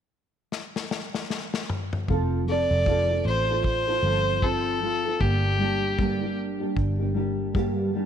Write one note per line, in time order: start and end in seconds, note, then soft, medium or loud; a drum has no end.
0.52 snare medium
0.76 snare medium
0.91 snare medium
1.14 snare medium
1.30 snare medium
1.54 snare medium
1.70 mid tom medium
1.93 mid tom medium
2.08 2.67 F1 medium
2.08 2.45 F3 medium
2.08 2.46 C4 medium
2.08 2.47 F4 medium
2.08 2.48 A4 medium
2.08 kick medium
2.47 2.85 F3 soft
2.47 2.86 C4 medium
2.47 2.86 F4 medium
2.47 2.87 A4 medium
2.47 3.23 D5 medium
2.71 3.22 F1 medium
2.86 3.10 F3 medium
2.86 3.10 C4 medium
2.86 3.10 F4 medium
2.86 3.08 A4 medium
2.86 kick medium
3.10 3.50 C4 soft
3.10 3.50 F4 soft
3.10 3.48 A4 soft
3.25 3.99 A1 medium
3.25 3.63 C5 medium
3.49 3.89 C4 soft
3.49 3.87 F4 soft
3.49 3.86 A4 soft
3.64 4.45 C5 medium
3.64 kick medium
3.87 4.03 C4 soft
3.87 4.04 F4 soft
3.87 4.03 A4 soft
4.03 5.16 G1 medium
4.03 4.41 F3 medium
4.03 4.42 C4 medium
4.03 4.42 F4 medium
4.03 4.43 A4 medium
4.42 4.80 F3 medium
4.42 4.81 C4 medium
4.42 4.82 F4 medium
4.42 5.23 A4 medium
4.42 4.83 A4 medium
4.42 kick medium
4.81 5.05 F3 medium
4.81 5.06 C4 medium
4.81 5.05 F4 medium
4.81 5.03 A4 medium
5.04 5.21 C4 soft
5.04 5.21 F4 soft
5.04 5.21 A4 soft
5.20 6.73 G1 medium
5.20 5.60 G2 medium
5.20 5.60 D3 medium
5.20 5.58 G3 medium
5.20 5.59 A#3 medium
5.20 5.60 D4 medium
5.20 6.38 G4 medium
5.20 5.60 G4 medium
5.20 kick medium
5.59 5.98 G3 medium
5.59 5.98 A#3 medium
5.59 5.99 D4 medium
5.59 5.99 G4 medium
5.98 6.22 G2 medium
5.98 6.22 D3 medium
5.98 6.22 G3 medium
5.98 6.22 A#3 medium
5.98 6.21 D4 medium
5.98 6.20 G4 medium
5.98 kick loud
6.21 6.62 G3 soft
6.21 6.61 A#3 soft
6.21 6.60 D4 soft
6.21 6.59 G4 soft
6.60 7.00 G3 soft
6.60 7.00 A#3 soft
6.60 6.99 D4 medium
6.60 6.98 G4 medium
6.76 8.06 G1 medium
6.76 kick medium
6.99 7.13 G3 soft
6.99 7.14 A#3 soft
6.99 7.14 D4 medium
6.99 7.15 G4 soft
7.14 7.54 G3 medium
7.14 7.54 A#3 medium
7.14 7.54 D4 medium
7.14 7.55 G4 medium
7.54 7.94 G2 medium
7.54 7.94 D3 medium
7.54 7.92 G3 medium
7.54 7.93 A#3 medium
7.54 7.94 D4 medium
7.54 7.95 G4 medium
7.54 kick medium
7.93 8.06 G3 medium
7.93 8.06 A#3 medium
7.93 8.06 D4 medium
7.93 8.06 G4 medium